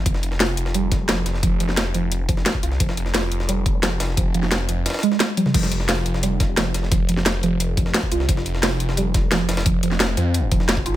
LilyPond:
<<
  \new Staff \with { instrumentName = "Synth pluck" } { \clef bass \time 4/4 \key c \phrygian \tempo 4 = 175 f16 r8. f'8 r8 g16 r8. f16 r8. | f16 r16 f16 r8. f16 r8. f8 r8 f'8 | f16 r8. f'8 r8 g16 r8. f16 r8. | f16 r16 f16 r8. f16 r8. aes8 r8 g8 |
f16 r8. f'8 r8 g16 r8. f16 r8. | f16 r16 f16 r8. f16 r8. f8 r8 f'8 | f16 r8. f'8 r8 g16 r8. f16 r8. | f16 r16 f16 r8. f16 r8. f8 r8 f'8 | }
  \new Staff \with { instrumentName = "Detuned saw bass" } { \clef bass \time 4/4 \key c \phrygian f,,4. f,,4. f,,8 f,,8~ | f,,8 f,,4 f,,4. r8 c,8 | f,,4. f,,4. f,,8 f,,8~ | f,,8 f,,4 f,,8 r2 |
f,,4. f,,4. f,,8 f,,8~ | f,,8 f,,4 f,,4. r8 c,8 | f,,4. f,,4. f,,8 f,,8~ | f,,8 f,,4 f,4 f,,4 aes,,8 | }
  \new DrumStaff \with { instrumentName = "Drums" } \drummode { \time 4/4 <hh bd>16 sn16 hh16 sn16 <hh hho sn>8 hh16 sn16 hh8 <hh bd sn>8 <hh sn>8 <hh sn>16 sn16 | <hh bd>8 hh16 sn16 <hh sn>8 hh8 hh8 <hh bd>16 sn16 <hh sn>16 bd16 hh16 sn16 | <hh bd>16 sn16 hh16 sn16 <hh hho sn>8 hh16 sn16 hh8 <hh bd>8 <hh sn>8 <hh hho sn>16 sn16 | <hh bd>8 hh16 sn16 <hh sn>8 hh8 <hh hho sn>32 <hho sn>32 <hho sn>32 <hho sn>32 hh16 sn16 <hh sn>8 <hh tommh>16 <sn toml>16 |
<cymc hh bd>16 sn16 hh16 sn16 <hh hho sn>8 hh16 sn16 hh8 <hh bd sn>8 <hh sn>8 <hh sn>16 sn16 | <hh bd>8 hh16 sn16 <hh sn>8 hh8 hh8 <hh bd>16 sn16 <hh sn>16 bd16 hh16 sn16 | <hh bd>16 sn16 hh16 sn16 <hh hho sn>8 hh16 sn16 hh8 <hh bd sn>8 <hh sn>8 <hh hho sn>16 <hho sn>16 | <hh bd>8 hh16 sn16 <hh sn>8 hh8 hh8 <hh bd>16 sn16 <hh sn>16 bd16 hh8 | }
>>